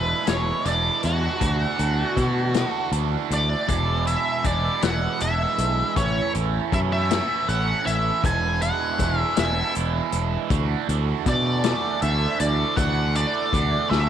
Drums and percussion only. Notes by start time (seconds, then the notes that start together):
0.27 snare, closed hi-hat
0.65 closed hi-hat
1.03 closed hi-hat
1.41 kick, closed hi-hat
1.79 closed hi-hat
2.17 kick, closed hi-hat
2.54 snare, closed hi-hat
2.92 closed hi-hat
3.31 closed hi-hat
3.68 kick, closed hi-hat
4.07 closed hi-hat
4.44 kick, closed hi-hat
4.82 snare, closed hi-hat
5.20 closed hi-hat
5.58 closed hi-hat
5.96 kick, closed hi-hat
6.35 closed hi-hat
6.72 kick, closed hi-hat
7.11 snare, closed hi-hat
7.49 closed hi-hat
7.87 closed hi-hat
8.24 kick, closed hi-hat
8.61 closed hi-hat
8.99 kick, closed hi-hat
9.36 snare, closed hi-hat
9.75 closed hi-hat
10.12 closed hi-hat
10.50 kick, closed hi-hat
10.89 closed hi-hat
11.26 kick, closed hi-hat
11.63 snare, closed hi-hat
12.02 closed hi-hat
12.40 closed hi-hat
12.77 kick, closed hi-hat
13.15 closed hi-hat
13.53 kick, closed hi-hat
13.92 snare